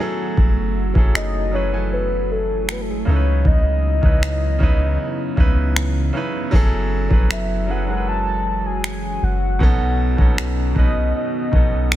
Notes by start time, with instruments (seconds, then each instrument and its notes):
Already playing: grand piano F#3, ambient pad A3 F#4
0.00 ambient pad E3 F#3, grand piano C#4 E4 G#4 A4
0.37 808-style bass F#1, kick
0.94 808-style bass F#1, grand piano F#3 C#4 E4 G#4 A4, kick
1.15 soft synth lead D#5, finger snap
1.51 grand piano F#3 C#4 E4 G#4, soft synth lead C#5
1.55 grand piano B4
1.71 grand piano F#3 C#4 E4 G#5
1.75 grand piano A4
1.93 soft synth lead B4
2.32 soft synth lead A4
2.69 soft synth lead B4, finger snap
2.81 soft synth lead A4
2.90 soft synth lead G#4
2.99 soft synth lead A4
3.05 808-style bass C#2, grand piano C#3 C#4 D#4 E4, ambient pad C#3 E3 B3, soft synth lead C#5
3.09 grand piano A4
3.16 grand piano B4
3.45 808-style bass C#2, soft synth lead D#5, kick
4.01 808-style bass C#2, grand piano C#3 C#4 D#4 E4, kick
4.05 grand piano B4
4.23 finger snap
4.59 808-style bass C#2, grand piano C#3 C#4 D#4 E4, kick
4.63 grand piano B4
5.36 808-style bass C#2, grand piano C#3 C#4 D#4 E4, kick
5.40 grand piano B4
5.76 finger snap
6.13 grand piano C#3 C#4 D#4 E4
6.17 grand piano B4
6.51 808-style bass F#1, ambient pad E3 C#4 F#4, grand piano F#3 C#4 E4 G#4, kick
6.55 grand piano A4
7.09 808-style bass F#1, grand piano F#3 C#4 E4 G#4, kick
7.13 grand piano B4
7.31 soft synth lead E5, finger snap
7.67 grand piano F#3 C#4 E4 G#4, soft synth lead F#5
7.71 grand piano B4
7.86 grand piano F#3 G#3 C#4 E4
7.90 grand piano A#4
7.97 grand piano B4
8.08 soft synth lead A5
8.66 soft synth lead G#5
8.84 finger snap
9.23 808-style bass F#1, soft synth lead F#5
9.59 808-style bass B1, grand piano B2 B3 C#4 D#4, ambient pad D#3 B3, soft synth lead F#5, kick
9.63 grand piano A4
10.17 808-style bass B1, grand piano B2 B3 C#4 D#4, kick
10.21 grand piano A4
10.38 finger snap
10.75 808-style bass B1, grand piano B2 B3 C#4 D#4, soft synth lead D#5, kick
10.79 grand piano B4
11.16 soft synth lead D#5
11.51 808-style bass B1, grand piano B2 B3 C#4 D#4, kick
11.56 grand piano A4
11.92 finger snap